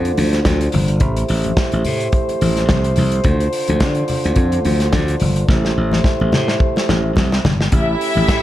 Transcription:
Already playing: slap bass F2, french horn section D3 D4 F4 C5
0.05 closed hi-hat
0.17 slap bass D2, open hi-hat, high conga
0.33 snare, closed hi-hat
0.45 slap bass D2, kick, snare, closed hi-hat, muted conga, high conga
0.61 closed hi-hat
0.72 slap bass G1, open hi-hat, high conga, low conga
0.88 closed hi-hat
1.00 slap bass A1, french horn section A3 E4 G4 C5, kick, closed hi-hat, muted conga, low conga
1.17 closed hi-hat
1.29 slap bass A1, open hi-hat
1.44 closed hi-hat, high conga
1.57 kick, snare, closed hi-hat
1.72 slap bass A1, closed hi-hat, muted conga
1.85 slap bass A2, open hi-hat, low conga
2.01 closed hi-hat
2.12 kick, closed hi-hat, muted conga
2.29 closed hi-hat, muted conga
2.41 slap bass A1, open hi-hat, high conga
2.57 snare, closed hi-hat
2.69 slap bass C2, kick, snare, closed hi-hat, muted conga, high conga
2.84 closed hi-hat, muted conga
2.96 slap bass C2, open hi-hat, high conga, low conga
3.12 closed hi-hat
3.24 slap bass D2, french horn section D3 D4 F4, kick, closed hi-hat, muted conga, low conga
3.40 closed hi-hat, muted conga
3.53 open hi-hat
3.68 slap bass D2, closed hi-hat, high conga
3.80 slap bass D3, kick, snare, closed hi-hat, muted conga
3.95 closed hi-hat, muted conga
4.08 open hi-hat, low conga
4.24 slap bass D2, closed hi-hat
4.36 slap bass F2, kick, closed hi-hat
4.52 closed hi-hat, muted conga
4.65 slap bass D2, open hi-hat, high conga
4.80 snare, closed hi-hat
4.92 slap bass D2, kick, snare, closed hi-hat, muted conga, high conga
5.08 closed hi-hat
5.20 slap bass G1, open hi-hat, high conga, low conga
5.36 closed hi-hat
5.48 slap bass A1, french horn section A3 E4 G4 C5, kick, snare, muted conga, low conga
5.64 snare, muted conga
5.77 slap bass A1
5.92 snare, high conga
6.04 kick, snare
6.20 slap bass A1, muted conga
6.32 slap bass A2, snare, high conga, low conga
6.48 snare
6.60 kick, muted conga
6.76 snare, muted conga
6.89 slap bass A1, snare, high conga
7.16 slap bass C2, kick, snare, muted conga, high conga
7.32 snare, muted conga
7.45 slap bass G1, snare, high conga, low conga
7.61 snare
7.72 slap bass A1, french horn section A3 C#4 G4, string section E4 E5, kick, closed hi-hat, muted conga, low conga
8.01 open hi-hat
8.15 slap bass A1, high conga
8.27 slap bass A2, kick, snare, closed hi-hat, muted conga

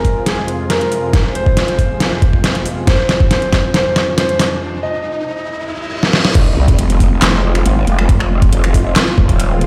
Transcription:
Already playing: supersaw synth F2 C3 G#3 F4, ambient pad F4 C5 G#5, grand piano A#4, riser
0.05 kick, open hi-hat
0.26 grand piano G#4, snare, closed hi-hat
0.48 closed hi-hat
0.70 grand piano A#4, snare, closed hi-hat
0.81 closed hi-hat
0.92 open hi-hat
1.13 kick, snare, closed hi-hat
1.35 grand piano C5, closed hi-hat
1.46 kick
1.57 snare, closed hi-hat
1.68 closed hi-hat
1.79 kick, open hi-hat
2.00 snare, closed hi-hat
2.22 kick, closed hi-hat
2.33 kick
2.44 snare, closed hi-hat
2.55 closed hi-hat
2.66 open hi-hat
2.87 grand piano C5, kick, snare, closed hi-hat
3.09 snare, closed hi-hat
3.20 kick
3.31 grand piano C5, snare, closed hi-hat
3.42 closed hi-hat
3.53 kick, snare, open hi-hat
3.74 grand piano C5, snare, closed hi-hat
3.96 snare, closed hi-hat
4.18 grand piano C5, snare, closed hi-hat
4.29 closed hi-hat
4.39 snare, open hi-hat
4.83 grand piano D#5
5.48 reverse cymbal
6.03 snare
6.13 snare
6.25 snare
6.35 wobble bass F1, supersaw synth G#3 C4 F4, kick, closed hi-hat, crash, impact
6.57 wobble bass C2
6.68 kick, closed hi-hat
6.79 wobble bass F1, closed hi-hat
6.90 closed hi-hat
7.00 kick, open hi-hat
7.22 wobble bass F1, finger snap, snare, clap, closed hi-hat
7.55 finger snap, closed hi-hat
7.66 wobble bass G#1, closed hi-hat
7.87 wobble bass F1, closed hi-hat
7.99 finger snap
8.09 kick, closed hi-hat
8.20 finger snap
8.42 kick, closed hi-hat
8.53 wobble bass F1, closed hi-hat
8.64 finger snap, closed hi-hat
8.74 kick, open hi-hat
8.96 snare, clap, closed hi-hat
9.18 wobble bass D#1, kick
9.29 kick, closed hi-hat
9.40 closed hi-hat
9.61 closed hi-hat

